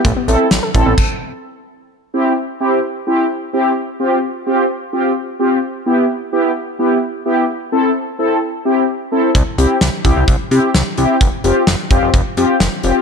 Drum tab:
CC |----x---|--------|--------|--------|
HH |xxxx----|--------|--------|--------|
SD |--o-----|--------|--------|--------|
BD |o--oo---|--------|--------|--------|

CC |--------|--------|--------|
HH |--------|xxxxxxxx|xxxxxxxx|
SD |--------|--o---o-|--o---o-|
BD |--------|o--oo---|o--oo---|